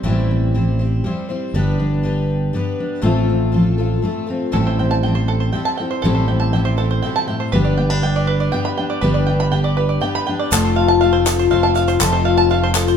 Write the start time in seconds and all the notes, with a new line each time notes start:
0.03 A1 A2 E3 G3 C4 E4 C5
0.08 C4 G4
0.31 C4
0.54 E3 G3 C4 E4 C5
0.79 G3 C4 E4 C5
1.04 E2 G3 C4 E4 C5
1.29 G3 C4 E4 C5
1.54 G1 G2 G3 B3 D4 G4 B4
1.80 D4
2.03 D3 G3 D4 G4 B4
2.53 G2 G3 B3 D4 G4 B4
2.80 D4
3.02 A1 A2 F3 A3 C4 F4 A4
3.06 F4
3.30 C4
3.52 F3 A3 C4 F4 A4
3.78 A3 C4 F4 A4
4.02 A2 A3 C4 F4 A4
4.27 A3 C4 F4 A4
4.52 A1 A2 E3 G3 C4 E4 A4
4.56 C4 G4
4.67 C5
4.79 C4 G5
4.91 A5
5.03 E3 G3 C4 E4 A4 G5
5.15 C5
5.28 A4
5.40 C5
5.53 E2 G3 C4 E4 A4 G5
5.65 A5
5.77 C4 E4 A4 G5
5.82 G3
5.91 C5
6.02 A1 A2 E3 G3 C4 E4 A4
6.06 G4
6.15 C5
6.28 C4 G5
6.40 A5
6.53 E3 G3 C4 E4 A4 G5
6.65 C5
6.77 G3 C4 E4 A4
6.91 C5
7.02 B2 G3 C4 E4 A4 G5
7.16 A5
7.27 A2 G3 C4 E4 A4 G5
7.40 C5
7.52 G1 G2 G3 B3 D4 G4 B4
7.65 D5
7.78 B3 G5
7.90 D4 B5
8.02 D3 G3 D4 G4 B4 G5
8.16 D5
8.27 B4
8.40 D5
8.52 G2 G3 B3 D4 G4 B4 G5
8.65 B5
8.78 D4 G5
8.90 D5
9.01 G1 G2 G3 B3 D4 G4 B4
9.14 D5
9.27 D4 G5
9.40 B5
9.51 D3 G3 D4 G4 B4 G5
9.64 D5
9.77 D4 G4 B4
9.89 D5
10.01 G2 G3 B3 D4 G4 B4 G5
10.15 B5
10.26 D4 G4 B4 G5
10.39 D5
10.51 F1 F3 A3 C4 F4 A4, clap, shaker
10.64 C5
10.76 F5
10.88 A5
11.01 A3 C4 F4 A4 F5
11.13 C5
11.26 C4 F4 A4, clap, shaker
11.39 C5
11.50 F1 A3 C4 F4 A4 F5
11.63 A5
11.75 C4 F4 A4 F5, clap, shaker
11.88 C5, clap, shaker
12.00 F1 F3 A3 C4 F4 A4, clap, shaker
12.13 C5
12.25 F5
12.38 A5
12.50 A3 C4 F4 A4 F5
12.63 C5
12.75 C4 F4 A4, clap, shaker
12.88 C5, shaker